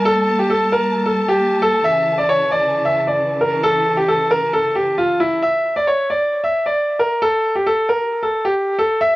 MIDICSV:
0, 0, Header, 1, 3, 480
1, 0, Start_track
1, 0, Tempo, 447761
1, 57, Time_signature, 4, 2, 24, 8
1, 9817, End_track
2, 0, Start_track
2, 0, Title_t, "Grand piano"
2, 0, Program_c, 0, 0
2, 55, Note_on_c, 0, 69, 104
2, 394, Note_off_c, 0, 69, 0
2, 417, Note_on_c, 0, 67, 80
2, 527, Note_off_c, 0, 67, 0
2, 535, Note_on_c, 0, 69, 85
2, 757, Note_off_c, 0, 69, 0
2, 775, Note_on_c, 0, 70, 81
2, 1114, Note_off_c, 0, 70, 0
2, 1134, Note_on_c, 0, 69, 72
2, 1356, Note_off_c, 0, 69, 0
2, 1377, Note_on_c, 0, 67, 86
2, 1715, Note_off_c, 0, 67, 0
2, 1737, Note_on_c, 0, 69, 97
2, 1958, Note_off_c, 0, 69, 0
2, 1975, Note_on_c, 0, 76, 100
2, 2314, Note_off_c, 0, 76, 0
2, 2335, Note_on_c, 0, 74, 80
2, 2446, Note_off_c, 0, 74, 0
2, 2455, Note_on_c, 0, 73, 91
2, 2676, Note_off_c, 0, 73, 0
2, 2695, Note_on_c, 0, 74, 87
2, 3034, Note_off_c, 0, 74, 0
2, 3058, Note_on_c, 0, 76, 81
2, 3278, Note_off_c, 0, 76, 0
2, 3295, Note_on_c, 0, 74, 76
2, 3634, Note_off_c, 0, 74, 0
2, 3655, Note_on_c, 0, 70, 79
2, 3877, Note_off_c, 0, 70, 0
2, 3896, Note_on_c, 0, 69, 105
2, 4235, Note_off_c, 0, 69, 0
2, 4254, Note_on_c, 0, 67, 80
2, 4366, Note_off_c, 0, 67, 0
2, 4375, Note_on_c, 0, 69, 88
2, 4597, Note_off_c, 0, 69, 0
2, 4616, Note_on_c, 0, 70, 89
2, 4837, Note_off_c, 0, 70, 0
2, 4857, Note_on_c, 0, 69, 92
2, 5078, Note_off_c, 0, 69, 0
2, 5096, Note_on_c, 0, 67, 76
2, 5317, Note_off_c, 0, 67, 0
2, 5335, Note_on_c, 0, 65, 78
2, 5557, Note_off_c, 0, 65, 0
2, 5573, Note_on_c, 0, 64, 83
2, 5796, Note_off_c, 0, 64, 0
2, 5815, Note_on_c, 0, 76, 96
2, 6154, Note_off_c, 0, 76, 0
2, 6176, Note_on_c, 0, 74, 81
2, 6287, Note_off_c, 0, 74, 0
2, 6295, Note_on_c, 0, 73, 80
2, 6517, Note_off_c, 0, 73, 0
2, 6537, Note_on_c, 0, 74, 77
2, 6875, Note_off_c, 0, 74, 0
2, 6897, Note_on_c, 0, 76, 80
2, 7118, Note_off_c, 0, 76, 0
2, 7137, Note_on_c, 0, 74, 75
2, 7475, Note_off_c, 0, 74, 0
2, 7496, Note_on_c, 0, 70, 81
2, 7717, Note_off_c, 0, 70, 0
2, 7737, Note_on_c, 0, 69, 97
2, 8075, Note_off_c, 0, 69, 0
2, 8097, Note_on_c, 0, 67, 74
2, 8207, Note_off_c, 0, 67, 0
2, 8216, Note_on_c, 0, 69, 86
2, 8437, Note_off_c, 0, 69, 0
2, 8458, Note_on_c, 0, 70, 81
2, 8796, Note_off_c, 0, 70, 0
2, 8818, Note_on_c, 0, 69, 76
2, 9038, Note_off_c, 0, 69, 0
2, 9056, Note_on_c, 0, 67, 85
2, 9395, Note_off_c, 0, 67, 0
2, 9417, Note_on_c, 0, 69, 89
2, 9638, Note_off_c, 0, 69, 0
2, 9656, Note_on_c, 0, 76, 104
2, 9817, Note_off_c, 0, 76, 0
2, 9817, End_track
3, 0, Start_track
3, 0, Title_t, "String section"
3, 0, Program_c, 1, 48
3, 0, Note_on_c, 1, 55, 82
3, 0, Note_on_c, 1, 58, 72
3, 0, Note_on_c, 1, 81, 91
3, 1938, Note_off_c, 1, 55, 0
3, 1938, Note_off_c, 1, 58, 0
3, 1976, Note_on_c, 1, 52, 82
3, 1977, Note_on_c, 1, 49, 75
3, 5774, Note_off_c, 1, 81, 0
3, 5778, Note_off_c, 1, 52, 0
3, 5779, Note_off_c, 1, 49, 0
3, 9817, End_track
0, 0, End_of_file